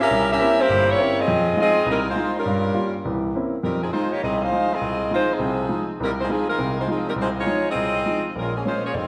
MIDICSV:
0, 0, Header, 1, 3, 480
1, 0, Start_track
1, 0, Key_signature, -4, "minor"
1, 0, Tempo, 294406
1, 170, Time_signature, 4, 2, 24, 8
1, 14793, End_track
2, 0, Start_track
2, 0, Title_t, "Saxophone section"
2, 0, Program_c, 0, 65
2, 7, Note_on_c, 0, 76, 103
2, 14, Note_on_c, 0, 70, 95
2, 15, Note_on_c, 0, 61, 98
2, 15, Note_on_c, 0, 67, 96
2, 445, Note_off_c, 0, 76, 0
2, 448, Note_off_c, 0, 70, 0
2, 449, Note_off_c, 0, 61, 0
2, 449, Note_off_c, 0, 67, 0
2, 517, Note_on_c, 0, 61, 95
2, 521, Note_on_c, 0, 70, 100
2, 522, Note_on_c, 0, 76, 125
2, 524, Note_on_c, 0, 67, 103
2, 940, Note_off_c, 0, 61, 0
2, 942, Note_off_c, 0, 70, 0
2, 943, Note_off_c, 0, 76, 0
2, 944, Note_off_c, 0, 67, 0
2, 979, Note_on_c, 0, 67, 96
2, 980, Note_on_c, 0, 64, 102
2, 980, Note_on_c, 0, 72, 113
2, 992, Note_on_c, 0, 58, 93
2, 1442, Note_off_c, 0, 67, 0
2, 1443, Note_off_c, 0, 64, 0
2, 1443, Note_off_c, 0, 72, 0
2, 1449, Note_off_c, 0, 58, 0
2, 1462, Note_on_c, 0, 64, 92
2, 1464, Note_on_c, 0, 67, 87
2, 1467, Note_on_c, 0, 73, 102
2, 1470, Note_on_c, 0, 58, 89
2, 1923, Note_off_c, 0, 64, 0
2, 1925, Note_off_c, 0, 67, 0
2, 1926, Note_off_c, 0, 73, 0
2, 1927, Note_off_c, 0, 58, 0
2, 1953, Note_on_c, 0, 68, 92
2, 1958, Note_on_c, 0, 75, 103
2, 1960, Note_on_c, 0, 65, 90
2, 1965, Note_on_c, 0, 60, 101
2, 2586, Note_off_c, 0, 68, 0
2, 2589, Note_off_c, 0, 75, 0
2, 2590, Note_off_c, 0, 65, 0
2, 2592, Note_off_c, 0, 60, 0
2, 2613, Note_on_c, 0, 65, 92
2, 2616, Note_on_c, 0, 68, 98
2, 2618, Note_on_c, 0, 75, 112
2, 2619, Note_on_c, 0, 60, 94
2, 3035, Note_off_c, 0, 65, 0
2, 3037, Note_off_c, 0, 68, 0
2, 3038, Note_off_c, 0, 60, 0
2, 3038, Note_off_c, 0, 75, 0
2, 3092, Note_on_c, 0, 55, 83
2, 3096, Note_on_c, 0, 60, 74
2, 3099, Note_on_c, 0, 63, 86
2, 3102, Note_on_c, 0, 70, 91
2, 3348, Note_off_c, 0, 55, 0
2, 3350, Note_off_c, 0, 60, 0
2, 3352, Note_off_c, 0, 63, 0
2, 3353, Note_off_c, 0, 70, 0
2, 3408, Note_on_c, 0, 65, 83
2, 3416, Note_on_c, 0, 72, 101
2, 3418, Note_on_c, 0, 63, 81
2, 3423, Note_on_c, 0, 56, 84
2, 3823, Note_off_c, 0, 65, 0
2, 3828, Note_off_c, 0, 72, 0
2, 3829, Note_off_c, 0, 63, 0
2, 3831, Note_off_c, 0, 56, 0
2, 3876, Note_on_c, 0, 55, 77
2, 3887, Note_on_c, 0, 61, 74
2, 3889, Note_on_c, 0, 70, 88
2, 3890, Note_on_c, 0, 65, 76
2, 4808, Note_off_c, 0, 55, 0
2, 4813, Note_off_c, 0, 61, 0
2, 4814, Note_off_c, 0, 70, 0
2, 4815, Note_off_c, 0, 65, 0
2, 5926, Note_on_c, 0, 63, 75
2, 5929, Note_on_c, 0, 60, 72
2, 5929, Note_on_c, 0, 70, 84
2, 5934, Note_on_c, 0, 55, 80
2, 6204, Note_off_c, 0, 63, 0
2, 6205, Note_off_c, 0, 60, 0
2, 6205, Note_off_c, 0, 70, 0
2, 6208, Note_off_c, 0, 55, 0
2, 6233, Note_on_c, 0, 63, 77
2, 6234, Note_on_c, 0, 68, 91
2, 6238, Note_on_c, 0, 53, 70
2, 6240, Note_on_c, 0, 60, 74
2, 6379, Note_off_c, 0, 63, 0
2, 6394, Note_off_c, 0, 68, 0
2, 6397, Note_off_c, 0, 53, 0
2, 6398, Note_off_c, 0, 60, 0
2, 6398, Note_on_c, 0, 72, 97
2, 6399, Note_on_c, 0, 63, 88
2, 6400, Note_on_c, 0, 56, 81
2, 6403, Note_on_c, 0, 65, 89
2, 6680, Note_off_c, 0, 63, 0
2, 6680, Note_off_c, 0, 72, 0
2, 6681, Note_off_c, 0, 56, 0
2, 6683, Note_off_c, 0, 65, 0
2, 6714, Note_on_c, 0, 67, 88
2, 6714, Note_on_c, 0, 73, 88
2, 6717, Note_on_c, 0, 63, 80
2, 6720, Note_on_c, 0, 58, 80
2, 6887, Note_off_c, 0, 67, 0
2, 6887, Note_off_c, 0, 73, 0
2, 6889, Note_off_c, 0, 63, 0
2, 6889, Note_on_c, 0, 65, 86
2, 6890, Note_off_c, 0, 58, 0
2, 6893, Note_on_c, 0, 68, 80
2, 6894, Note_on_c, 0, 60, 79
2, 6896, Note_on_c, 0, 75, 94
2, 7166, Note_off_c, 0, 65, 0
2, 7168, Note_off_c, 0, 68, 0
2, 7169, Note_off_c, 0, 60, 0
2, 7170, Note_off_c, 0, 75, 0
2, 7200, Note_on_c, 0, 77, 97
2, 7211, Note_on_c, 0, 63, 83
2, 7212, Note_on_c, 0, 68, 82
2, 7213, Note_on_c, 0, 72, 86
2, 7672, Note_off_c, 0, 77, 0
2, 7678, Note_off_c, 0, 63, 0
2, 7678, Note_off_c, 0, 68, 0
2, 7679, Note_off_c, 0, 72, 0
2, 7699, Note_on_c, 0, 68, 89
2, 7703, Note_on_c, 0, 60, 93
2, 7706, Note_on_c, 0, 75, 96
2, 7709, Note_on_c, 0, 65, 91
2, 8341, Note_off_c, 0, 68, 0
2, 8344, Note_off_c, 0, 60, 0
2, 8345, Note_off_c, 0, 75, 0
2, 8347, Note_off_c, 0, 65, 0
2, 8369, Note_on_c, 0, 63, 82
2, 8373, Note_on_c, 0, 56, 81
2, 8378, Note_on_c, 0, 72, 108
2, 8380, Note_on_c, 0, 65, 84
2, 8629, Note_off_c, 0, 63, 0
2, 8631, Note_off_c, 0, 56, 0
2, 8634, Note_off_c, 0, 72, 0
2, 8635, Note_off_c, 0, 65, 0
2, 8682, Note_on_c, 0, 63, 85
2, 8683, Note_on_c, 0, 53, 86
2, 8685, Note_on_c, 0, 60, 82
2, 8690, Note_on_c, 0, 68, 97
2, 9616, Note_off_c, 0, 63, 0
2, 9617, Note_off_c, 0, 53, 0
2, 9618, Note_off_c, 0, 60, 0
2, 9620, Note_off_c, 0, 68, 0
2, 9814, Note_on_c, 0, 60, 76
2, 9821, Note_on_c, 0, 70, 88
2, 9826, Note_on_c, 0, 55, 72
2, 9829, Note_on_c, 0, 63, 74
2, 9939, Note_off_c, 0, 60, 0
2, 9945, Note_off_c, 0, 70, 0
2, 9949, Note_off_c, 0, 55, 0
2, 9951, Note_off_c, 0, 63, 0
2, 10111, Note_on_c, 0, 63, 82
2, 10114, Note_on_c, 0, 65, 75
2, 10115, Note_on_c, 0, 72, 91
2, 10125, Note_on_c, 0, 56, 75
2, 10253, Note_off_c, 0, 63, 0
2, 10260, Note_off_c, 0, 65, 0
2, 10260, Note_off_c, 0, 72, 0
2, 10265, Note_off_c, 0, 56, 0
2, 10270, Note_on_c, 0, 68, 96
2, 10271, Note_on_c, 0, 60, 81
2, 10273, Note_on_c, 0, 63, 86
2, 10274, Note_on_c, 0, 53, 84
2, 10553, Note_off_c, 0, 63, 0
2, 10561, Note_off_c, 0, 68, 0
2, 10562, Note_off_c, 0, 60, 0
2, 10563, Note_off_c, 0, 53, 0
2, 10573, Note_on_c, 0, 63, 80
2, 10574, Note_on_c, 0, 70, 98
2, 10579, Note_on_c, 0, 56, 85
2, 10584, Note_on_c, 0, 65, 86
2, 11009, Note_off_c, 0, 63, 0
2, 11010, Note_off_c, 0, 70, 0
2, 11013, Note_off_c, 0, 56, 0
2, 11015, Note_off_c, 0, 65, 0
2, 11074, Note_on_c, 0, 56, 69
2, 11077, Note_on_c, 0, 63, 70
2, 11078, Note_on_c, 0, 72, 86
2, 11079, Note_on_c, 0, 65, 74
2, 11220, Note_off_c, 0, 56, 0
2, 11222, Note_off_c, 0, 63, 0
2, 11222, Note_off_c, 0, 72, 0
2, 11223, Note_off_c, 0, 65, 0
2, 11253, Note_on_c, 0, 53, 77
2, 11262, Note_on_c, 0, 60, 74
2, 11263, Note_on_c, 0, 63, 69
2, 11264, Note_on_c, 0, 68, 82
2, 11513, Note_off_c, 0, 53, 0
2, 11518, Note_off_c, 0, 60, 0
2, 11519, Note_off_c, 0, 63, 0
2, 11519, Note_off_c, 0, 68, 0
2, 11544, Note_on_c, 0, 63, 70
2, 11552, Note_on_c, 0, 70, 81
2, 11553, Note_on_c, 0, 55, 74
2, 11556, Note_on_c, 0, 60, 76
2, 11617, Note_off_c, 0, 63, 0
2, 11623, Note_off_c, 0, 70, 0
2, 11624, Note_off_c, 0, 55, 0
2, 11626, Note_off_c, 0, 60, 0
2, 11745, Note_on_c, 0, 63, 73
2, 11751, Note_on_c, 0, 72, 85
2, 11759, Note_on_c, 0, 65, 72
2, 11761, Note_on_c, 0, 56, 75
2, 11869, Note_off_c, 0, 63, 0
2, 11873, Note_off_c, 0, 72, 0
2, 11879, Note_off_c, 0, 65, 0
2, 11881, Note_off_c, 0, 56, 0
2, 12049, Note_on_c, 0, 65, 80
2, 12050, Note_on_c, 0, 56, 82
2, 12052, Note_on_c, 0, 73, 98
2, 12058, Note_on_c, 0, 63, 87
2, 12469, Note_off_c, 0, 65, 0
2, 12470, Note_off_c, 0, 56, 0
2, 12471, Note_off_c, 0, 73, 0
2, 12474, Note_off_c, 0, 63, 0
2, 12542, Note_on_c, 0, 68, 93
2, 12544, Note_on_c, 0, 65, 87
2, 12546, Note_on_c, 0, 60, 89
2, 12550, Note_on_c, 0, 75, 101
2, 13468, Note_off_c, 0, 68, 0
2, 13469, Note_off_c, 0, 65, 0
2, 13470, Note_off_c, 0, 60, 0
2, 13472, Note_off_c, 0, 75, 0
2, 13669, Note_on_c, 0, 56, 75
2, 13670, Note_on_c, 0, 70, 86
2, 13678, Note_on_c, 0, 65, 69
2, 13681, Note_on_c, 0, 61, 69
2, 13923, Note_off_c, 0, 56, 0
2, 13923, Note_off_c, 0, 70, 0
2, 13927, Note_off_c, 0, 65, 0
2, 13929, Note_off_c, 0, 61, 0
2, 13952, Note_on_c, 0, 53, 68
2, 13953, Note_on_c, 0, 58, 66
2, 13959, Note_on_c, 0, 61, 65
2, 13961, Note_on_c, 0, 68, 80
2, 14100, Note_off_c, 0, 53, 0
2, 14101, Note_off_c, 0, 58, 0
2, 14104, Note_off_c, 0, 61, 0
2, 14105, Note_off_c, 0, 68, 0
2, 14126, Note_on_c, 0, 61, 86
2, 14132, Note_on_c, 0, 56, 80
2, 14134, Note_on_c, 0, 65, 79
2, 14137, Note_on_c, 0, 72, 89
2, 14391, Note_off_c, 0, 61, 0
2, 14393, Note_off_c, 0, 56, 0
2, 14395, Note_off_c, 0, 65, 0
2, 14396, Note_off_c, 0, 72, 0
2, 14424, Note_on_c, 0, 65, 75
2, 14435, Note_on_c, 0, 73, 92
2, 14439, Note_on_c, 0, 68, 77
2, 14441, Note_on_c, 0, 58, 72
2, 14534, Note_off_c, 0, 65, 0
2, 14540, Note_off_c, 0, 73, 0
2, 14542, Note_off_c, 0, 68, 0
2, 14544, Note_off_c, 0, 58, 0
2, 14553, Note_on_c, 0, 74, 70
2, 14581, Note_on_c, 0, 75, 84
2, 14582, Note_on_c, 0, 65, 81
2, 14582, Note_on_c, 0, 68, 79
2, 14583, Note_on_c, 0, 60, 82
2, 14586, Note_off_c, 0, 74, 0
2, 14793, Note_off_c, 0, 60, 0
2, 14793, Note_off_c, 0, 65, 0
2, 14793, Note_off_c, 0, 68, 0
2, 14793, Note_off_c, 0, 75, 0
2, 14793, End_track
3, 0, Start_track
3, 0, Title_t, "Grand piano"
3, 0, Program_c, 1, 0
3, 173, Note_on_c, 1, 36, 72
3, 584, Note_off_c, 1, 36, 0
3, 659, Note_on_c, 1, 58, 47
3, 660, Note_on_c, 1, 60, 52
3, 664, Note_on_c, 1, 61, 49
3, 670, Note_on_c, 1, 64, 57
3, 972, Note_off_c, 1, 58, 0
3, 972, Note_off_c, 1, 60, 0
3, 974, Note_off_c, 1, 61, 0
3, 977, Note_off_c, 1, 64, 0
3, 1130, Note_on_c, 1, 31, 67
3, 1136, Note_on_c, 1, 43, 69
3, 1541, Note_off_c, 1, 31, 0
3, 1544, Note_off_c, 1, 43, 0
3, 1610, Note_on_c, 1, 58, 56
3, 1617, Note_on_c, 1, 60, 50
3, 1623, Note_on_c, 1, 61, 51
3, 1627, Note_on_c, 1, 64, 55
3, 1926, Note_off_c, 1, 58, 0
3, 1929, Note_off_c, 1, 60, 0
3, 1932, Note_off_c, 1, 61, 0
3, 1934, Note_off_c, 1, 64, 0
3, 2085, Note_on_c, 1, 41, 74
3, 2497, Note_off_c, 1, 41, 0
3, 2551, Note_on_c, 1, 56, 54
3, 2561, Note_on_c, 1, 63, 45
3, 2572, Note_on_c, 1, 65, 60
3, 2875, Note_off_c, 1, 56, 0
3, 2881, Note_off_c, 1, 63, 0
3, 2886, Note_off_c, 1, 65, 0
3, 3031, Note_on_c, 1, 36, 66
3, 3448, Note_off_c, 1, 36, 0
3, 3519, Note_on_c, 1, 56, 53
3, 3526, Note_on_c, 1, 63, 50
3, 3537, Note_on_c, 1, 65, 56
3, 3839, Note_off_c, 1, 56, 0
3, 3842, Note_off_c, 1, 63, 0
3, 3848, Note_off_c, 1, 65, 0
3, 4003, Note_on_c, 1, 43, 78
3, 4415, Note_off_c, 1, 43, 0
3, 4462, Note_on_c, 1, 55, 54
3, 4472, Note_on_c, 1, 58, 48
3, 4476, Note_on_c, 1, 65, 60
3, 4790, Note_off_c, 1, 55, 0
3, 4795, Note_off_c, 1, 58, 0
3, 4797, Note_off_c, 1, 65, 0
3, 4971, Note_on_c, 1, 52, 62
3, 4973, Note_on_c, 1, 36, 62
3, 5379, Note_off_c, 1, 52, 0
3, 5380, Note_off_c, 1, 36, 0
3, 5463, Note_on_c, 1, 58, 50
3, 5464, Note_on_c, 1, 60, 49
3, 5472, Note_on_c, 1, 61, 43
3, 5476, Note_on_c, 1, 64, 52
3, 5770, Note_off_c, 1, 58, 0
3, 5771, Note_off_c, 1, 60, 0
3, 5775, Note_off_c, 1, 61, 0
3, 5777, Note_off_c, 1, 64, 0
3, 5925, Note_on_c, 1, 41, 63
3, 6336, Note_off_c, 1, 41, 0
3, 6418, Note_on_c, 1, 53, 49
3, 6420, Note_on_c, 1, 56, 41
3, 6431, Note_on_c, 1, 63, 55
3, 6729, Note_off_c, 1, 53, 0
3, 6730, Note_off_c, 1, 56, 0
3, 6735, Note_off_c, 1, 63, 0
3, 6898, Note_on_c, 1, 36, 64
3, 7304, Note_off_c, 1, 36, 0
3, 7365, Note_on_c, 1, 53, 43
3, 7374, Note_on_c, 1, 56, 43
3, 7384, Note_on_c, 1, 63, 51
3, 7683, Note_off_c, 1, 53, 0
3, 7688, Note_off_c, 1, 56, 0
3, 7693, Note_off_c, 1, 63, 0
3, 7845, Note_on_c, 1, 36, 61
3, 8258, Note_off_c, 1, 36, 0
3, 8331, Note_on_c, 1, 53, 46
3, 8331, Note_on_c, 1, 56, 46
3, 8345, Note_on_c, 1, 63, 53
3, 8647, Note_off_c, 1, 56, 0
3, 8648, Note_off_c, 1, 53, 0
3, 8655, Note_off_c, 1, 63, 0
3, 8791, Note_on_c, 1, 36, 57
3, 8795, Note_on_c, 1, 48, 67
3, 9212, Note_off_c, 1, 36, 0
3, 9214, Note_off_c, 1, 48, 0
3, 9273, Note_on_c, 1, 53, 47
3, 9276, Note_on_c, 1, 63, 54
3, 9278, Note_on_c, 1, 56, 44
3, 9599, Note_off_c, 1, 53, 0
3, 9601, Note_off_c, 1, 63, 0
3, 9602, Note_off_c, 1, 56, 0
3, 9783, Note_on_c, 1, 36, 72
3, 10190, Note_off_c, 1, 36, 0
3, 10256, Note_on_c, 1, 53, 45
3, 10261, Note_on_c, 1, 56, 43
3, 10273, Note_on_c, 1, 63, 56
3, 10572, Note_off_c, 1, 53, 0
3, 10574, Note_off_c, 1, 56, 0
3, 10580, Note_off_c, 1, 63, 0
3, 10732, Note_on_c, 1, 48, 57
3, 10733, Note_on_c, 1, 36, 61
3, 11145, Note_off_c, 1, 36, 0
3, 11145, Note_off_c, 1, 48, 0
3, 11211, Note_on_c, 1, 53, 48
3, 11214, Note_on_c, 1, 56, 45
3, 11219, Note_on_c, 1, 63, 48
3, 11530, Note_off_c, 1, 53, 0
3, 11531, Note_off_c, 1, 56, 0
3, 11534, Note_off_c, 1, 63, 0
3, 11670, Note_on_c, 1, 36, 68
3, 12093, Note_off_c, 1, 36, 0
3, 12149, Note_on_c, 1, 53, 52
3, 12167, Note_on_c, 1, 63, 53
3, 12169, Note_on_c, 1, 56, 43
3, 12479, Note_off_c, 1, 53, 0
3, 12488, Note_off_c, 1, 63, 0
3, 12489, Note_off_c, 1, 56, 0
3, 12633, Note_on_c, 1, 36, 55
3, 13055, Note_off_c, 1, 36, 0
3, 13133, Note_on_c, 1, 53, 50
3, 13138, Note_on_c, 1, 56, 42
3, 13151, Note_on_c, 1, 63, 48
3, 13452, Note_off_c, 1, 53, 0
3, 13454, Note_off_c, 1, 56, 0
3, 13461, Note_off_c, 1, 63, 0
3, 13626, Note_on_c, 1, 34, 65
3, 14033, Note_off_c, 1, 34, 0
3, 14108, Note_on_c, 1, 56, 48
3, 14110, Note_on_c, 1, 58, 43
3, 14115, Note_on_c, 1, 61, 53
3, 14419, Note_off_c, 1, 56, 0
3, 14420, Note_off_c, 1, 58, 0
3, 14423, Note_off_c, 1, 61, 0
3, 14573, Note_on_c, 1, 29, 61
3, 14793, Note_off_c, 1, 29, 0
3, 14793, End_track
0, 0, End_of_file